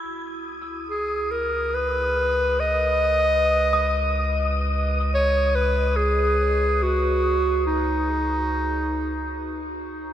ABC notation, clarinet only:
X:1
M:3/4
L:1/8
Q:1/4=71
K:D#phr
V:1 name="Clarinet"
z2 G A B2 | d4- d z | c B G2 F2 | D4- D z |]